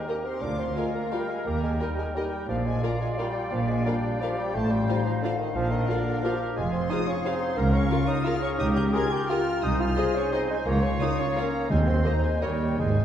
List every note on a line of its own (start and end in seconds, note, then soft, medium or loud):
0.00 0.11 D#4 medium
0.00 0.38 A#4 medium
0.00 0.38 G5 medium
0.07 0.27 A#3 medium
0.07 0.20 G4 soft
0.07 0.17 G4 soft
0.07 0.45 G4 medium
0.07 0.21 A#4 soft
0.07 0.17 A#4 soft
0.07 0.17 A#4 medium
0.07 0.17 D#5 soft
0.07 0.14 A#5 medium
0.25 0.43 C4 medium
0.25 0.42 C6 medium
0.42 0.71 D2 medium
0.42 0.60 D4 medium
0.42 0.78 F4 medium
0.42 2.45 A#4 medium
0.42 1.48 F5 medium
0.42 0.59 D6 medium
0.59 0.78 C4 medium
0.59 0.77 C6 medium
0.76 0.94 G#3 medium
0.76 0.90 F4 soft
0.76 0.85 F4 medium
0.76 1.14 F4 medium
0.76 0.84 A#4 medium
0.76 0.90 A#4 medium
0.76 0.86 A#4 medium
0.76 0.84 F5 soft
0.76 0.95 G#5 medium
0.94 1.14 A#3 medium
0.94 1.12 A#5 medium
1.12 1.31 G3 medium
1.12 1.25 F4 soft
1.12 1.21 F4 medium
1.12 1.20 A#4 soft
1.12 1.25 A#4 soft
1.12 1.48 A#4 medium
1.12 1.21 A#4 soft
1.12 1.20 F5 soft
1.12 1.29 G5 medium
1.29 1.45 G#3 medium
1.29 1.46 G#5 medium
1.46 1.75 D#2 medium
1.46 1.62 A#3 medium
1.46 1.83 G4 medium
1.46 2.47 G5 medium
1.46 1.62 A#5 medium
1.62 1.79 G#3 medium
1.62 1.80 G#5 medium
1.80 1.97 G3 medium
1.80 2.15 D#4 medium
1.80 1.93 G4 medium
1.80 1.89 G4 soft
1.80 1.88 A#4 soft
1.80 1.93 A#4 medium
1.80 1.89 A#4 soft
1.80 1.88 D#5 soft
1.80 1.87 G5 medium
1.98 2.17 G#3 medium
1.98 2.05 G#5 medium
2.15 2.48 G3 medium
2.15 2.50 D#4 medium
2.15 2.28 G4 medium
2.15 2.24 G4 soft
2.15 2.24 A#4 medium
2.15 2.28 A#4 medium
2.15 2.24 A#4 medium
2.15 2.24 D#5 medium
2.15 2.48 G5 medium
2.48 2.76 A#1 medium
2.48 2.77 A#2 medium
2.48 2.67 F3 medium
2.48 3.89 F4 medium
2.48 4.56 D5 medium
2.48 4.50 F5 medium
2.48 2.56 F5 medium
2.65 2.84 G#3 medium
2.65 2.82 G#5 medium
2.83 3.02 A#3 medium
2.83 2.91 F4 medium
2.83 2.96 F4 medium
2.83 2.91 A#4 medium
2.83 2.91 D5 medium
2.83 2.96 D5 medium
2.83 2.91 F5 medium
2.83 3.01 A#5 medium
3.00 3.19 G#3 medium
3.00 3.08 G#5 medium
3.18 3.51 G3 medium
3.18 3.26 F4 medium
3.18 3.31 F4 medium
3.18 3.26 A#4 medium
3.18 3.31 D5 medium
3.18 3.27 D5 medium
3.18 3.26 F5 medium
3.18 3.52 G5 medium
3.52 3.80 A#1 medium
3.52 3.80 A#2 medium
3.52 3.59 F3 medium
3.52 3.69 F5 medium
3.68 3.87 G#3 medium
3.68 3.86 G#5 medium
3.86 4.22 G3 medium
3.86 4.23 D4 medium
3.86 3.99 F4 medium
3.86 3.94 F4 medium
3.86 3.94 A#4 medium
3.86 3.94 D5 medium
3.86 3.99 D5 medium
3.86 3.94 F5 medium
3.86 4.22 G5 medium
4.20 4.37 F3 medium
4.20 4.33 F4 medium
4.20 4.30 F4 medium
4.20 4.57 G4 medium
4.20 4.30 A#4 medium
4.20 4.33 D5 medium
4.20 4.30 D5 medium
4.20 4.30 F5 medium
4.20 4.39 F5 medium
4.38 4.56 G3 medium
4.38 4.55 G5 medium
4.54 4.83 A1 medium
4.54 4.83 A2 medium
4.54 4.72 A3 medium
4.54 4.88 F4 medium
4.54 5.30 C5 medium
4.54 6.30 F5 medium
4.54 4.71 A5 medium
4.70 5.04 G3 medium
4.70 5.06 G5 medium
4.88 5.32 D#4 medium
4.88 4.97 F4 medium
4.88 5.02 F4 medium
4.88 4.96 C5 medium
4.88 5.02 C5 medium
4.88 4.97 F5 medium
5.05 5.13 F3 medium
5.05 5.12 F5 medium
5.22 5.41 D3 loud
5.22 5.31 F4 medium
5.22 5.36 F4 medium
5.22 5.36 C5 medium
5.22 5.33 C5 medium
5.22 5.30 D5 medium
5.22 5.32 F5 medium
5.39 5.55 D#3 medium
5.39 5.56 D#5 medium
5.55 5.83 A#1 medium
5.55 5.83 A#2 medium
5.55 5.73 F3 loud
5.55 6.26 D4 medium
5.55 6.53 A#4 medium
5.55 5.71 F5 medium
5.71 5.90 D#3 medium
5.71 5.89 D#5 medium
5.89 6.25 D3 medium
5.89 5.97 F4 medium
5.89 6.02 F4 medium
5.89 6.02 A#4 medium
5.89 5.98 A#4 medium
5.89 6.24 D5 medium
5.89 5.98 F5 medium
6.24 6.41 F3 medium
6.24 6.36 F4 medium
6.24 6.33 F4 medium
6.24 6.59 G4 medium
6.24 6.32 A#4 medium
6.24 6.36 A#4 medium
6.24 6.41 F5 medium
6.24 6.32 F5 medium
6.56 6.84 F1 medium
6.56 6.85 F2 medium
6.56 6.73 G#3 medium
6.56 7.27 F4 medium
6.56 7.59 G#4 medium
6.56 8.56 F5 medium
6.56 6.72 G#5 medium
6.72 6.91 C4 medium
6.72 6.91 C6 medium
6.90 7.09 D#4 loud
6.90 7.02 F4 medium
6.90 6.99 F4 medium
6.90 7.02 G#4 medium
6.90 6.98 G#4 medium
6.90 6.98 C5 medium
6.90 6.98 F5 medium
6.90 7.08 D#6 loud
7.08 7.26 C#4 medium
7.08 7.25 C#6 medium
7.25 7.58 C4 loud
7.25 7.58 D#4 medium
7.25 7.37 F4 medium
7.25 7.33 F4 medium
7.25 7.37 G#4 medium
7.25 7.33 G#4 medium
7.25 7.33 C5 medium
7.25 7.33 F5 medium
7.25 7.57 C6 medium
7.57 7.86 C#2 medium
7.57 7.74 A#3 loud
7.57 7.92 C#4 medium
7.57 9.62 A#4 medium
7.57 7.74 A#5 medium
7.73 8.09 C#4 loud
7.73 8.09 C#6 medium
7.90 8.03 F4 medium
7.90 8.28 F4 medium
7.90 8.00 F4 medium
7.90 8.03 A#4 medium
7.90 7.99 A#4 medium
7.90 8.00 A#4 medium
7.90 7.98 F5 medium
8.08 8.26 D#4 loud
8.08 8.26 D#6 medium
8.25 8.41 F4 loud
8.25 8.38 F4 medium
8.25 8.34 F4 medium
8.25 8.61 G#4 medium
8.25 8.34 A#4 medium
8.25 8.39 A#4 medium
8.25 8.33 F5 medium
8.25 8.43 F6 loud
8.42 8.60 C#4 loud
8.42 8.49 C#6 medium
8.58 8.88 C#2 medium
8.58 8.75 D#4 loud
8.58 8.95 G4 medium
8.58 9.65 G5 medium
8.58 8.66 D#6 loud
8.75 8.94 G4 loud
8.75 8.83 G6 medium
8.93 9.62 F4 medium
8.93 9.02 G4 medium
8.93 9.07 G4 medium
8.93 9.13 G#4 loud
8.93 9.07 A#4 medium
8.93 9.02 A#4 medium
8.93 9.03 A#4 medium
8.93 9.03 D#5 medium
8.93 9.12 G#6 medium
9.12 9.31 G4 loud
9.12 9.30 G6 medium
9.29 9.64 F4 loud
9.29 9.38 G4 medium
9.29 9.42 G4 medium
9.29 9.42 A#4 medium
9.29 9.38 A#4 medium
9.29 9.37 D#5 medium
9.29 9.62 F6 medium
9.63 9.91 C2 medium
9.63 9.92 C2 medium
9.63 9.82 D#4 loud
9.63 9.96 D#4 medium
9.63 10.70 C5 medium
9.63 10.65 G#5 medium
9.63 9.79 D#6 medium
9.80 10.16 F4 loud
9.80 10.15 F6 medium
9.97 10.34 G#4 medium
9.97 10.05 G#4 medium
9.97 10.11 G#4 medium
9.97 10.05 C5 medium
9.97 10.11 C5 medium
9.97 10.05 D#5 medium
10.15 10.34 C#4 medium
10.15 10.33 C#6 medium
10.33 10.50 C4 medium
10.33 10.69 D#4 medium
10.33 10.41 G#4 medium
10.33 10.46 G#4 medium
10.33 10.41 C5 medium
10.33 10.46 C5 medium
10.33 10.41 D#5 medium
10.33 10.40 C6 medium
10.50 10.58 G#3 loud
10.50 10.67 G#5 medium
10.66 10.95 C#2 medium
10.66 10.85 A#3 loud
10.66 11.39 F4 medium
10.66 11.70 C#5 medium
10.66 11.71 F5 medium
10.66 10.84 A#5 medium
10.83 11.03 C#4 medium
10.83 11.01 C#6 medium
11.00 11.21 D#4 loud
11.00 11.09 F4 medium
11.00 11.09 A#4 medium
11.00 11.14 A#4 medium
11.00 11.14 C#5 medium
11.00 11.09 C#5 medium
11.00 11.09 F5 medium
11.00 11.19 D#6 medium
11.18 11.38 C#4 medium
11.18 11.37 C#6 medium
11.36 11.71 A#3 medium
11.36 11.70 C#4 medium
11.36 11.44 F4 medium
11.36 11.48 A#4 medium
11.36 11.44 A#4 medium
11.36 11.48 C#5 medium
11.36 11.46 C#5 medium
11.36 11.46 F5 medium
11.36 11.70 A#5 medium
11.70 11.99 D#2 medium
11.70 12.20 D#3 medium
11.70 11.88 G#3 loud
11.70 12.05 C4 medium
11.70 12.45 C5 medium
11.70 12.78 D#5 medium
11.70 11.77 G#5 medium
11.87 12.04 C4 medium
11.87 12.04 C6 medium
12.04 12.13 A#3 medium
12.04 12.44 D#4 medium
12.04 12.14 G#4 medium
12.04 12.13 C5 medium
12.04 12.18 C5 medium
12.04 12.14 C5 medium
12.04 12.18 D#5 medium
12.04 12.13 D#5 medium
12.04 12.24 A#5 medium
12.24 12.43 G#3 medium
12.24 12.43 G#5 medium
12.42 12.73 D#2 medium
12.42 12.78 G3 medium
12.42 12.50 A#4 medium
12.42 12.82 A#4 medium
12.42 12.55 C#5 medium
12.42 12.51 C#5 medium
12.42 12.79 C#5 medium
12.42 12.50 D#5 medium
12.42 12.56 D#5 medium
12.42 12.79 G5 medium
12.78 13.05 G#1 medium
12.78 13.05 G#2 medium
12.78 13.05 G#3 loud
12.78 13.05 G#4 medium
12.78 13.05 C5 medium
12.78 13.05 D#5 medium
12.78 13.05 G#5 medium